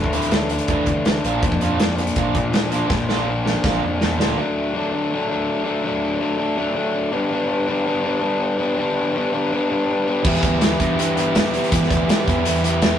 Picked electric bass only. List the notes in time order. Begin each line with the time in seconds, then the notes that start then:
0.04 D2
0.69 D2
0.87 D2
1.24 A#1
1.52 F2
2.16 A#1
2.35 A#2
2.90 A#1
3.01 A#1
3.64 A#1
3.84 F2
4.02 E2
4.21 D2
10.25 E2
10.43 D2
10.80 G2
11.72 E3
11.91 D2
12.28 E2
12.47 E2